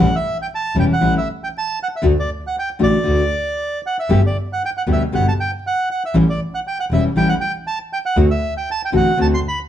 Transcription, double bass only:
0.00 A1
0.75 E1
1.02 A1
2.04 D2
2.81 A1
3.07 D2
4.10 G1
4.87 D2
5.14 G1
6.15 A1
6.90 E1
7.15 A1
8.17 D2
8.94 A1
9.20 D2

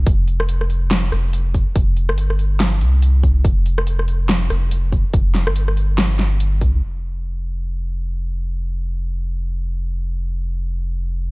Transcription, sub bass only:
0.07 F1
1.12 F1
1.76 F1
2.09 G1
2.81 C2
3.45 F1
4.50 F1
5.14 F1
5.47 G1
6.61 C2
6.74 C2
6.83 F1

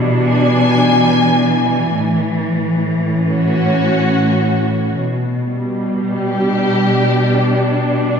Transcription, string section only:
Already playing: B2 E3 D4 E4
0.29 G#5
1.95 A2
3.18 C#4
3.33 F#4
4.99 B2
5.48 G3
6.17 G4
6.36 D4

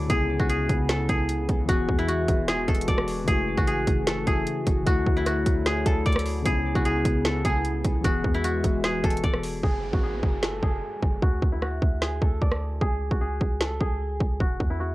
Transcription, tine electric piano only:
Already playing: D3 A3 E4 F#4
0.06 C#3 B3
0.11 E4 G#4
1.65 E3 B3
1.70 F#4 G#4
3.24 C#3 A3
3.29 E4 F#4
4.25 C#3 A3 E4 F#4
4.83 D3 A3
4.88 E4 F#4
6.42 C#3 B3
6.47 E4 G#4
8.01 E3 B3
8.06 F#4 G#4

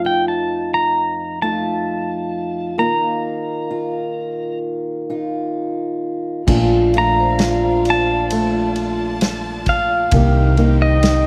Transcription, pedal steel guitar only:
0.06 G5
0.28 A5
0.74 A#5
1.42 A5
2.79 A#5
6.98 A#5
7.90 A5
9.69 F5
10.82 D#5

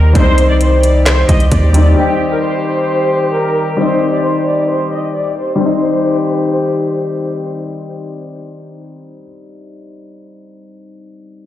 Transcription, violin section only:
Already playing: A#4
0.15 C5
0.49 D5
0.61 C5
0.83 D5
1.06 C5
1.29 D#5
1.52 D5
1.97 G4
2.31 A#4
2.43 C5
2.65 C5
3.33 A#4
3.79 C5
4.13 D5
4.24 C5
4.47 D5
4.70 C5
4.92 D#5
5.15 D5
5.38 C5
5.61 C5

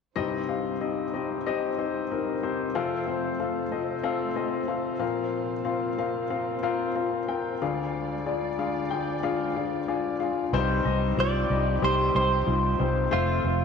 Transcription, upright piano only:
0.16 C2 G2 C4 D#4 G4 D#5
0.48 C4 D#4 G4 F5
0.81 C4 D#4 G4 D#5
1.14 C4 D#4 G4 D#5
1.46 C4 D#4 G4 D#5
1.79 C4 D#4 G4 C5
2.12 C4 D#4 G4 A#4
2.43 C4 D#4 G4 C5
2.75 F2 C3 C4 F4 A4 F5
3.07 C4 F4 A4 C5
3.40 C4 F4 A4 F5
3.72 C4 F4 A4 D#5
4.03 C4 F4 A4 F5
4.36 C4 F4 A4 D#5
4.68 C4 F4 A4 F5
4.99 A#2 F3 C4 F4 A#4 F5
5.65 C4 F4 A#4 F5
5.98 C4 F4 A#4 F5
6.30 C4 F4 A#4 F5
6.63 C4 F4 A#4 F5
6.95 C4 F4 A#4 F5
7.28 C4 F4 A#4 G5
7.62 D2 D3 D4 F4 G#4 F5
8.26 D4 F4 G#4 D5
8.59 D4 F4 G#4 F5
8.90 D4 F4 G#4 G5
9.23 D4 F4 G#4 F5
9.56 D4 F4 G#4 F5
9.88 D4 F4 G#4 F5 G#5
10.20 D4 F4 G#4 F5
10.53 G2 G3 C4 D#4 C5
10.85 G3 C4 D#4 D#5
11.17 G3 C4 D#4 F4
11.51 G3 C4 D#4 D#5
11.82 G3 C4 D#4 G4
12.14 G3 C4 D#4 C5
12.46 G3 C4 D#4 F4
12.80 G3 C4 D#4 C5
13.11 C3 A3 C4 F4 C5
13.44 A3 C4 F4 C5

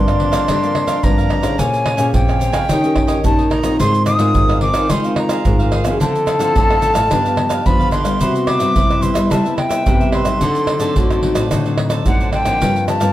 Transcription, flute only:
Already playing: C6
1.04 A#5
1.59 G#5
2.14 G5
3.25 A5
3.51 A#5
3.80 C6
4.06 D#6
4.62 D6
4.91 C6
5.18 A#5
6.01 A5
7.66 B5
7.92 C6
8.47 D6
9.02 C6
9.31 A5
9.58 G5
10.13 C6
12.07 F#5
12.33 G5
12.88 A5

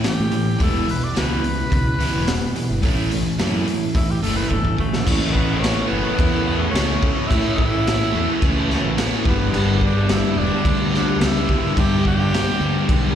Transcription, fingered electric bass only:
0.20 A2
0.60 E1
1.17 C#2
1.72 C#2
2.16 E1
2.70 G1
2.83 A1
3.39 F#2
3.95 A2
4.24 F#1
4.50 G1
4.79 A1
5.07 A1
5.91 F#1
6.19 E2
6.73 C#2
7.31 A2
8.14 E2
8.42 C#2
8.84 A1
9.26 G1
9.53 G1
10.36 E1
10.65 D2
11.21 C#2
11.77 G2
12.60 D2
12.89 B1

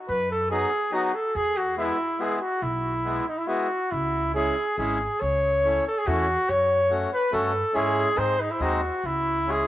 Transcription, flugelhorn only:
0.08 B4
0.31 A4
0.51 G#4
0.93 F#4
1.15 A4
1.35 G#4
1.57 F#4
1.77 E4
2.21 G#4
2.37 F#4 G#4
2.62 E4
3.28 D#4
3.38 E4
3.47 F#4
3.91 E4
4.35 G#4
4.79 G#4
5.21 C#5
5.87 A4
5.98 G#4
6.07 F#4
6.50 C#5
7.13 B4
7.33 A4
7.75 G#4
8.18 C5
8.40 D#4
8.51 E4
8.62 F#4
9.06 E4
9.51 G#4

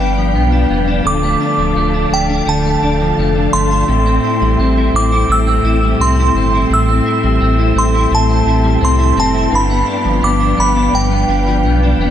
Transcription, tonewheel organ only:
Already playing: D4 B4 F5 G5
1.05 A4 A5
3.88 C4 E5 G5
9.51 D4 B4 F5

